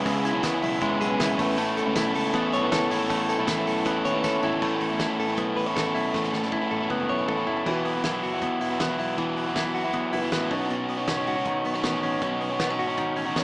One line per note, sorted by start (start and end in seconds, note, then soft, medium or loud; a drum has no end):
0.00 0.80 G#3 medium
0.00 0.44 B3 medium
0.00 0.96 C#4 medium
0.00 0.25 E4 medium
0.00 0.97 E4 medium
0.00 0.99 G#4 medium
0.00 0.98 B4 medium
0.00 4.59 B4 medium
0.00 4.58 E5 medium
0.00 1.37 G#5 medium
0.00 1.35 C#6 medium
0.05 0.30 C#2 loud
0.05 1.43 C#3 medium
0.05 0.33 G#3 medium
0.05 0.32 B3 medium
0.05 0.33 C#4 medium
0.05 0.32 E4 medium
0.05 kick loud
0.05 hi-hat pedal medium
0.05 open hi-hat medium
0.05 tambourine medium
0.25 0.63 E4 medium
0.25 hi-hat pedal medium
0.25 open hi-hat medium
0.25 tambourine medium
0.33 0.42 B1 medium
0.33 0.54 C#3 medium
0.33 0.53 G#3 medium
0.33 0.52 B3 medium
0.33 0.53 C#4 medium
0.33 0.50 E4 medium
0.43 0.60 C#2 medium
0.43 1.61 B3 medium
0.43 kick loud
0.43 snare loud
0.43 hi-hat pedal medium
0.43 open hi-hat medium
0.43 tambourine loud
0.52 0.81 B3 medium
0.52 0.81 C#4 soft
0.52 0.81 E4 medium
0.62 0.79 B1 medium
0.62 1.19 E4 medium
0.62 hi-hat pedal medium
0.62 open hi-hat medium
0.62 tambourine soft
0.81 0.98 G#1 loud
0.81 1.10 C#3 medium
0.81 1.10 G#3 medium
0.81 1.39 G#3 medium
0.81 1.09 B3 medium
0.81 1.09 C#4 medium
0.81 1.08 E4 loud
0.81 kick loud
0.81 hi-hat pedal medium
0.81 open hi-hat medium
0.81 tambourine soft
1.00 1.33 B1 medium
1.00 1.35 C#4 medium
1.00 1.39 E4 medium
1.00 1.43 G#4 medium
1.00 1.39 B4 medium
1.00 hi-hat pedal medium
1.00 open hi-hat medium
1.00 tambourine medium
1.10 1.40 C#3 medium
1.10 1.37 G#3 medium
1.10 1.38 B3 medium
1.10 1.38 C#4 medium
1.10 1.39 E4 medium
1.20 1.96 E4 medium
1.20 kick loud
1.20 snare loud
1.20 hi-hat pedal medium
1.20 open hi-hat medium
1.20 tambourine medium
1.37 1.80 A1 loud
1.37 1.56 A3 medium
1.37 1.57 A3 medium
1.37 1.58 B3 medium
1.37 4.38 C#4 medium
1.37 1.57 C#4 medium
1.37 1.59 E4 medium
1.37 4.39 A4 medium
1.37 4.40 B4 medium
1.37 4.59 A5 medium
1.37 4.59 C#6 medium
1.37 kick loud
1.37 hi-hat pedal medium
1.37 open hi-hat medium
1.37 tambourine medium
1.57 1.86 A3 medium
1.57 3.09 A3 medium
1.57 1.85 B3 medium
1.57 1.86 C#4 medium
1.57 1.85 E4 medium
1.57 hi-hat pedal medium
1.57 open hi-hat medium
1.57 tambourine medium
1.77 2.15 A4 medium
1.77 hi-hat pedal medium
1.77 open hi-hat medium
1.77 tambourine medium
1.86 1.95 C#2 medium
1.86 2.06 A2 medium
1.86 2.06 A3 medium
1.86 2.05 B3 medium
1.86 2.06 C#4 medium
1.86 2.03 E4 medium
1.96 2.12 B1 medium
1.96 2.91 E4 medium
1.96 kick loud
1.96 snare loud
1.96 hi-hat pedal medium
1.96 open hi-hat medium
1.96 tambourine medium
2.04 2.34 B3 medium
2.04 2.34 C#4 soft
2.04 2.34 E4 medium
2.15 2.32 C#2 medium
2.15 2.71 A4 medium
2.15 hi-hat pedal medium
2.15 open hi-hat medium
2.33 2.50 E2 loud
2.33 2.63 A2 medium
2.33 2.62 A3 medium
2.33 3.86 B3 medium
2.33 2.61 B3 medium
2.33 2.62 C#4 medium
2.33 2.61 E4 loud
2.33 kick loud
2.33 hi-hat pedal medium
2.33 open hi-hat medium
2.33 tambourine soft
2.52 2.72 B1 medium
2.52 4.05 C#5 medium
2.52 hi-hat pedal medium
2.52 open hi-hat medium
2.52 tambourine medium
2.62 2.92 A2 medium
2.62 2.89 A3 medium
2.62 2.91 B3 medium
2.62 2.90 C#4 medium
2.62 2.91 E4 medium
2.72 2.89 C#2 loud
2.72 3.29 A4 medium
2.72 kick loud
2.72 snare loud
2.72 hi-hat pedal medium
2.72 open hi-hat medium
2.72 tambourine medium
2.90 3.07 G#1 loud
2.90 3.08 A3 medium
2.90 3.10 B3 medium
2.90 3.09 C#4 medium
2.90 3.48 E4 medium
2.90 3.10 E4 medium
2.90 hi-hat pedal medium
2.90 open hi-hat medium
2.90 tambourine medium
3.09 3.34 A1 loud
3.09 3.38 A3 medium
3.09 4.62 A3 medium
3.09 3.38 B3 medium
3.09 3.38 C#4 medium
3.09 3.37 E4 medium
3.09 kick loud
3.09 hi-hat pedal medium
3.09 open hi-hat medium
3.09 tambourine medium
3.29 3.67 A4 medium
3.29 hi-hat pedal medium
3.29 open hi-hat medium
3.29 tambourine medium
3.38 3.47 B1 medium
3.38 3.58 A2 medium
3.38 3.58 A3 medium
3.38 3.57 B3 medium
3.38 3.58 C#4 medium
3.38 3.56 E4 medium
3.47 3.64 A1 medium
3.47 4.43 E4 medium
3.47 kick loud
3.47 snare loud
3.47 hi-hat pedal medium
3.47 open hi-hat medium
3.47 tambourine loud
3.57 3.86 B3 medium
3.57 3.85 C#4 soft
3.57 3.86 E4 medium
3.67 3.83 B1 medium
3.67 4.24 A4 medium
3.67 hi-hat pedal medium
3.67 open hi-hat medium
3.67 tambourine soft
3.85 4.02 E2 medium
3.85 4.14 A2 medium
3.85 4.14 A3 medium
3.85 4.85 B3 medium
3.85 4.13 B3 medium
3.85 4.13 C#4 medium
3.85 4.13 E4 medium
3.85 kick loud
3.85 hi-hat pedal medium
3.85 open hi-hat medium
3.85 tambourine soft
4.05 4.38 D#2 medium
4.05 5.41 C#5 medium
4.05 hi-hat pedal medium
4.05 open hi-hat medium
4.05 tambourine medium
4.14 4.44 A2 medium
4.14 4.41 A3 medium
4.14 4.42 B3 medium
4.14 4.42 C#4 medium
4.14 4.43 E4 medium
4.24 4.81 A4 medium
4.24 kick loud
4.24 snare medium
4.24 tambourine medium
4.42 4.59 G#1 medium
4.42 4.60 A3 medium
4.42 4.61 B3 medium
4.42 4.61 C#4 medium
4.42 5.00 E4 medium
4.42 4.61 E4 medium
4.42 mid tom loud
4.42 tambourine medium
4.53 floor tom medium
4.61 4.78 A1 medium
4.61 4.90 A2 medium
4.61 4.90 A3 medium
4.61 6.13 A3 medium
4.61 4.89 B3 medium
4.61 4.90 C#4 medium
4.61 4.88 E4 medium
4.61 kick loud
4.61 crash medium
4.80 5.05 A1 medium
4.80 5.18 A4 medium
4.80 open hi-hat medium
4.89 5.08 B3 soft
4.89 5.08 C#4 soft
4.89 5.07 E4 medium
5.00 5.94 E4 medium
5.00 kick loud
5.00 snare loud
5.00 closed hi-hat medium
5.08 5.28 A2 medium
5.08 5.28 A3 medium
5.08 5.27 B3 medium
5.08 5.28 C#4 medium
5.08 5.26 E4 medium
5.19 5.35 A1 medium
5.19 5.74 A4 medium
5.19 open hi-hat medium
5.28 5.67 A2 medium
5.28 5.67 A3 medium
5.28 5.67 B3 medium
5.28 5.67 C#4 medium
5.28 5.66 E4 medium
5.37 5.54 B1 medium
5.37 6.90 B3 medium
5.37 kick loud
5.37 closed hi-hat medium
5.57 5.73 A1 medium
5.57 5.66 B4 medium
5.57 open hi-hat medium
5.66 5.86 B3 medium
5.66 5.87 C#4 soft
5.66 5.85 E4 medium
5.66 7.08 C#5 medium
5.76 5.92 A1 medium
5.76 6.32 A4 medium
5.76 kick loud
5.76 snare loud
5.76 closed hi-hat medium
5.86 6.15 B3 medium
5.86 6.14 C#4 medium
5.86 6.14 E4 medium
5.95 6.11 B1 medium
5.95 6.52 E4 medium
5.95 open hi-hat medium
6.14 6.30 A1 medium
6.14 6.43 A2 medium
6.14 7.65 A3 medium
6.14 6.43 A3 medium
6.14 6.43 B3 medium
6.14 6.43 C#4 medium
6.14 6.41 E4 medium
6.14 kick loud
6.14 snare medium
6.24 snare soft
6.33 6.58 A1 medium
6.33 6.70 A4 medium
6.33 snare medium
6.42 6.60 B3 medium
6.42 6.61 C#4 medium
6.42 6.60 E4 medium
6.42 snare soft
6.52 7.47 E4 medium
6.52 kick loud
6.52 high tom medium
6.61 6.81 A2 medium
6.61 6.80 A3 medium
6.61 6.80 B3 medium
6.61 6.80 C#4 medium
6.61 6.79 E4 medium
6.61 high tom medium
6.71 6.87 A1 medium
6.71 7.27 A4 medium
6.71 high tom medium
6.80 7.19 A2 medium
6.80 7.19 A3 medium
6.80 7.19 B3 medium
6.80 7.19 C#4 medium
6.80 7.18 E4 medium
6.80 mid tom medium
6.90 7.06 C#2 medium
6.90 7.85 B3 medium
6.90 kick loud
6.90 mid tom medium
7.00 mid tom medium
7.09 7.26 B1 medium
7.09 7.70 C#5 medium
7.09 mid tom medium
7.18 7.37 B3 soft
7.18 7.38 C#4 soft
7.18 7.36 E4 medium
7.18 mid tom medium
7.28 7.45 A1 medium
7.28 7.70 A4 medium
7.28 kick loud
7.28 mid tom medium
7.37 7.65 B3 medium
7.37 7.66 C#4 soft
7.37 7.66 E4 medium
7.37 floor tom medium
7.47 7.64 F#1 medium
7.47 8.04 E4 medium
7.47 floor tom medium
7.57 floor tom medium
7.65 7.99 E1 medium
7.65 7.94 E2 medium
7.65 9.17 E3 medium
7.65 7.95 E3 medium
7.65 7.95 F#3 medium
7.65 7.95 B3 medium
7.65 10.09 E4 medium
7.65 7.93 E4 medium
7.65 7.94 F#4 medium
7.65 10.10 F#4 medium
7.65 10.10 B4 medium
7.65 kick loud
7.65 crash medium
7.85 8.42 B3 medium
7.85 open hi-hat medium
7.94 8.15 F#3 soft
7.94 8.14 B3 soft
7.94 8.12 E4 medium
7.94 8.13 F#4 soft
8.04 8.20 B1 medium
8.04 8.60 E4 medium
8.04 kick loud
8.04 snare loud
8.04 closed hi-hat medium
8.13 8.34 F#3 soft
8.13 8.33 B3 soft
8.13 8.31 E4 medium
8.13 8.32 F#4 medium
8.23 8.48 F#1 medium
8.23 9.74 F#4 medium
8.23 open hi-hat medium
8.32 8.72 F#3 soft
8.32 8.71 B3 soft
8.32 8.69 E4 soft
8.32 8.70 F#4 soft
8.42 8.79 B3 medium
8.42 kick loud
8.42 closed hi-hat medium
8.61 8.77 E1 medium
8.61 8.98 E4 medium
8.61 open hi-hat medium
8.70 8.90 F#3 soft
8.70 8.90 B3 soft
8.70 8.88 E4 medium
8.70 8.89 F#4 soft
8.80 8.96 E1 medium
8.80 9.36 B3 medium
8.80 kick loud
8.80 snare loud
8.80 closed hi-hat medium
8.89 9.17 F#3 soft
8.89 9.17 B3 medium
8.89 9.18 E4 medium
8.89 9.17 F#4 medium
8.99 9.15 B1 medium
8.99 9.54 E4 medium
8.99 open hi-hat medium
9.17 9.75 E1 medium
9.17 9.46 E2 medium
9.17 9.46 E3 medium
9.17 10.55 E3 medium
9.17 9.47 F#3 medium
9.17 9.46 B3 medium
9.17 9.45 E4 medium
9.17 9.46 F#4 medium
9.17 kick loud
9.17 closed hi-hat medium
9.37 9.93 B3 medium
9.37 open hi-hat medium
9.46 9.66 F#3 soft
9.46 9.66 B3 soft
9.46 9.64 E4 medium
9.46 9.65 F#4 medium
9.56 10.12 E4 medium
9.56 kick loud
9.56 snare loud
9.56 closed hi-hat medium
9.65 9.86 F#3 soft
9.65 9.85 B3 soft
9.65 9.83 E4 medium
9.65 9.84 F#4 soft
9.75 10.07 F#1 medium
9.75 11.27 F#4 medium
9.75 open hi-hat medium
9.84 10.24 F#3 soft
9.84 10.23 B3 soft
9.84 10.20 E4 medium
9.84 10.22 F#4 soft
9.93 10.32 B3 medium
9.93 kick medium
9.93 closed hi-hat medium
10.13 10.29 F#1 medium
10.13 10.55 E4 medium
10.13 10.51 E4 medium
10.13 10.51 F#4 soft
10.13 10.51 B4 medium
10.13 open hi-hat medium
10.22 10.42 F#3 soft
10.22 10.42 B3 soft
10.22 10.40 E4 medium
10.22 10.41 F#4 soft
10.32 10.48 A1 medium
10.32 10.89 B3 medium
10.32 kick loud
10.32 snare loud
10.32 closed hi-hat medium
10.41 10.50 F#3 soft
10.41 10.49 B3 soft
10.41 10.51 E4 medium
10.41 10.50 F#4 medium
10.49 10.99 B1 loud
10.49 10.69 B2 medium
10.49 11.00 B3 medium
10.49 13.31 C#4 medium
10.49 10.98 D#4 medium
10.49 13.32 D#4 medium
10.49 10.98 F#4 medium
10.49 13.33 B4 medium
10.49 10.97 C#5 medium
10.49 kick loud
10.49 open hi-hat medium
10.70 12.21 B2 medium
10.70 closed hi-hat medium
10.88 11.66 B3 medium
10.88 open hi-hat medium
10.97 11.18 D#4 soft
10.97 11.17 F#4 soft
10.97 11.16 C#5 medium
11.08 11.24 F#1 medium
11.08 11.65 C#4 medium
11.08 kick loud
11.08 snare loud
11.08 closed hi-hat medium
11.17 11.37 D#4 soft
11.17 11.36 F#4 soft
11.17 11.34 C#5 medium
11.27 11.51 C#2 medium
11.27 12.78 F#4 medium
11.27 open hi-hat medium
11.36 11.75 D#4 soft
11.36 11.74 F#4 soft
11.36 11.73 C#5 medium
11.45 12.97 D#3 medium
11.45 kick loud
11.45 closed hi-hat medium
11.65 11.81 B1 medium
11.65 11.75 B3 medium
11.65 open hi-hat medium
11.74 12.02 C#4 soft
11.74 11.94 D#4 soft
11.74 11.93 F#4 soft
11.74 11.91 C#5 medium
11.83 12.00 A1 medium
11.83 12.41 B3 medium
11.83 kick loud
11.83 snare loud
11.83 closed hi-hat medium
11.93 12.21 D#4 medium
11.93 12.22 F#4 medium
11.93 12.22 C#5 medium
12.03 12.19 A1 medium
12.03 12.60 C#4 medium
12.03 open hi-hat medium
12.22 12.76 B1 medium
12.22 13.44 B2 medium
12.22 12.50 B3 medium
12.22 12.50 D#4 medium
12.22 12.50 F#4 medium
12.22 12.48 C#5 medium
12.22 kick loud
12.22 closed hi-hat medium
12.41 12.60 B3 medium
12.41 open hi-hat medium
12.49 12.69 D#4 soft
12.49 12.68 F#4 soft
12.49 12.67 C#5 medium
12.60 12.70 B3 medium
12.60 kick loud
12.60 snare loud
12.60 closed hi-hat medium
12.68 13.15 C#4 soft
12.68 12.89 D#4 soft
12.68 12.88 F#4 medium
12.68 12.86 C#5 soft
12.79 13.12 G#1 medium
12.79 13.44 F#4 medium
12.79 open hi-hat medium
12.88 13.27 D#4 soft
12.88 13.25 F#4 soft
12.88 13.25 C#5 medium
12.97 13.44 D#3 medium
12.97 kick loud
12.97 closed hi-hat medium
13.16 13.33 A1 medium
13.16 13.44 C#4 medium
13.16 open hi-hat medium
13.25 13.44 D#4 soft
13.25 13.44 F#4 soft
13.25 13.43 C#5 medium
13.36 13.44 A1 medium
13.36 13.44 B3 medium
13.36 13.44 C#4 medium
13.36 13.44 D#4 soft
13.36 13.44 C#5 medium
13.36 kick loud
13.36 snare loud
13.36 closed hi-hat medium